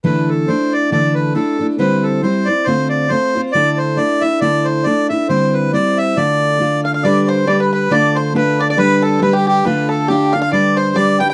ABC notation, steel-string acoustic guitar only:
X:1
M:2/4
L:1/8
Q:"Swing" 1/4=137
K:Ddor
V:1 name="Steel-string acoustic guitar"
[D,E,A,DEA]2 [A,DEA]2 | [D,E,A,DEA]2 [A,DEA] [A,DEA] | [D,G,CEc]2 [G,CEc] [CEc] | [D,A,CFc]2 [A,CFc] [CFc] |
[D,A,DEA]2 [A,DEA] [DEA] | [D,A,DEA]2 [A,DEA] [DEA] | [D,G,CEc]2 [G,CEc]2 | [D,A,DFA]2 [A,DFA]2 |
[G,DGB]2 [G,DGB]2 | [D,A,DFA]2 [A,DFA]2 | [G,DGB]2 [G,DGB]2 | [D,A,DFA]2 [A,DFA] [DFA] |
[G,DGB]2 [G,DGB] [DGB] |]